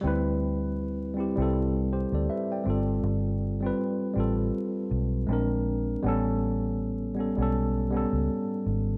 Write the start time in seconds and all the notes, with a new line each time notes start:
0.01 D2 G3 C4
0.06 E4 B4
1.14 G3 C4
1.18 E4 G4
1.36 C2 G3 C4
1.40 E4 A4
1.54 E4 A4
1.93 G4 C5
2.12 D2 A4 D5
2.30 B4 E5
2.52 D5 G5
2.64 G1 G3 C4 F4
2.70 A4
3.03 G1
3.61 G3 C4
3.65 F4 B4
4.14 A1 G3 C4
4.18 F4 A4
4.91 B1
5.27 A#1 G#3 C4
5.31 D4 A#4
6.02 A1 G3 B3
6.06 C#4 A4
7.14 G3 B3
7.19 C#4 A4
7.37 B1 G3 B3
7.41 C#4 A4
7.91 G3 B3 C#4
7.97 A4
8.13 C#2
8.66 G#1